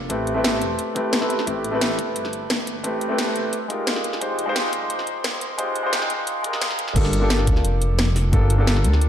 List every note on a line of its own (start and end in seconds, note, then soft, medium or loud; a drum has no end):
0.00 0.12 A#3 medium
0.00 0.12 D4 medium
0.00 0.12 F4 medium
0.00 0.10 G4 medium
0.00 0.12 A4 loud
0.09 0.63 A1 medium
0.09 0.33 A3 medium
0.09 0.34 C4 medium
0.09 0.34 E4 medium
0.09 0.34 G4 medium
0.09 0.34 B4 medium
0.09 kick loud
0.09 closed hi-hat medium
0.27 closed hi-hat medium
0.34 0.93 A3 medium
0.34 0.93 C4 medium
0.34 0.94 E4 medium
0.34 0.94 G4 medium
0.34 0.95 B4 medium
0.44 snare loud
0.44 closed hi-hat medium
0.61 0.77 E1 medium
0.61 closed hi-hat medium
0.79 closed hi-hat medium
0.95 1.19 A3 medium
0.95 1.19 C4 medium
0.95 1.20 E4 medium
0.95 1.20 G4 medium
0.95 1.20 B4 medium
0.95 kick loud
0.95 closed hi-hat medium
1.13 snare loud
1.13 closed hi-hat medium
1.21 1.45 A3 medium
1.21 1.45 C4 medium
1.21 1.45 E4 medium
1.21 1.45 G4 medium
1.21 1.46 B4 medium
1.21 snare soft
1.30 closed hi-hat medium
1.39 snare soft
1.46 2.00 A1 loud
1.46 1.70 A3 medium
1.46 1.70 C4 medium
1.46 1.71 E4 medium
1.46 1.71 G4 medium
1.46 1.72 B4 medium
1.46 kick loud
1.46 closed hi-hat medium
1.64 closed hi-hat medium
1.71 2.81 A3 medium
1.71 2.82 C4 medium
1.71 2.82 E4 medium
1.71 2.83 G4 medium
1.71 2.83 B4 loud
1.81 snare loud
1.81 closed hi-hat medium
1.99 2.14 E1 medium
1.99 kick loud
1.99 closed hi-hat medium
2.16 2.83 G1 medium
2.16 closed hi-hat medium
2.25 snare soft
2.33 closed hi-hat medium
2.50 snare loud
2.50 closed hi-hat medium
2.67 closed hi-hat medium
2.83 3.37 A1 loud
2.83 3.07 A3 medium
2.83 3.08 C4 medium
2.83 3.08 E4 medium
2.83 3.08 G4 medium
2.83 3.09 B4 medium
2.83 kick loud
2.83 closed hi-hat medium
3.01 closed hi-hat medium
3.09 3.51 A3 medium
3.09 3.51 C4 medium
3.09 3.52 E4 medium
3.09 3.52 G4 medium
3.09 3.53 B4 medium
3.18 snare loud
3.18 closed hi-hat medium
3.36 3.51 E1 medium
3.36 closed hi-hat medium
3.53 closed hi-hat loud
3.68 4.19 G#3 medium
3.68 4.19 D#4 medium
3.68 4.19 F4 medium
3.68 4.20 G4 medium
3.68 4.20 A#4 medium
3.68 kick loud
3.68 closed hi-hat medium
3.87 snare loud
3.87 closed hi-hat medium
3.96 snare soft
4.04 closed hi-hat medium
4.13 snare soft
4.20 4.75 F1 loud
4.20 4.44 G#3 medium
4.20 4.45 D#4 medium
4.20 4.45 F4 medium
4.20 4.46 G4 medium
4.20 4.46 C5 medium
4.20 kick loud
4.20 closed hi-hat medium
4.39 closed hi-hat medium
4.46 5.56 G#3 medium
4.46 5.56 D#4 medium
4.46 5.57 F4 medium
4.46 5.57 G4 medium
4.46 5.58 C5 loud
4.56 snare loud
4.56 closed hi-hat medium
4.73 4.88 C2 medium
4.73 kick loud
4.73 closed hi-hat medium
4.90 5.57 D#1 medium
4.90 closed hi-hat loud
4.99 snare soft
5.07 closed hi-hat medium
5.24 snare loud
5.24 closed hi-hat medium
5.41 closed hi-hat medium
5.58 6.12 F1 loud
5.58 5.81 G#3 medium
5.58 5.82 D#4 medium
5.58 5.82 F4 medium
5.58 5.83 G4 medium
5.58 5.83 C5 medium
5.58 kick loud
5.58 closed hi-hat loud
5.76 closed hi-hat medium
5.83 6.41 G#3 medium
5.83 6.42 D#4 medium
5.83 6.42 F4 medium
5.83 6.43 G4 medium
5.83 6.43 C5 loud
5.93 snare loud
5.93 closed hi-hat loud
6.02 snare medium
6.10 6.26 C2 medium
6.10 closed hi-hat medium
6.27 closed hi-hat loud
6.43 6.93 G#3 medium
6.43 6.93 D#4 medium
6.43 6.94 F4 medium
6.43 6.94 G4 medium
6.43 6.95 A#4 medium
6.43 kick loud
6.43 closed hi-hat medium
6.53 snare medium
6.61 6.80 F1 loud
6.61 snare loud
6.61 closed hi-hat loud
6.71 snare soft
6.79 6.94 D#1 medium
6.79 closed hi-hat medium
6.88 snare soft
6.95 7.49 G1 loud
6.95 7.19 A#3 medium
6.95 7.19 D4 medium
6.95 7.20 F4 medium
6.95 7.20 G4 medium
6.95 7.20 A4 medium
6.95 kick loud
6.95 closed hi-hat medium
6.95 crash loud
7.05 snare soft
7.13 closed hi-hat loud
7.20 8.30 A#3 medium
7.20 8.31 D4 medium
7.20 8.31 F4 medium
7.20 8.31 G4 medium
7.20 8.32 A4 loud
7.30 snare loud
7.30 closed hi-hat medium
7.39 snare soft
7.47 7.63 D2 medium
7.47 kick loud
7.47 closed hi-hat loud
7.56 snare soft
7.64 8.32 F1 medium
7.64 closed hi-hat medium
7.82 closed hi-hat loud
7.99 snare loud
7.99 closed hi-hat medium
8.16 snare soft
8.16 open hi-hat medium
8.32 8.86 G1 medium
8.32 8.56 A#3 medium
8.32 8.57 D4 medium
8.32 8.57 F4 medium
8.32 8.57 G4 medium
8.32 8.57 A4 medium
8.32 kick loud
8.32 closed hi-hat medium
8.50 closed hi-hat medium
8.57 9.09 A#3 medium
8.57 9.09 D4 medium
8.57 9.09 F4 medium
8.57 9.09 G4 medium
8.57 9.09 A4 loud
8.67 snare loud
8.67 closed hi-hat medium
8.76 snare soft
8.84 9.09 D2 medium
8.84 closed hi-hat loud
8.93 snare soft
9.01 closed hi-hat medium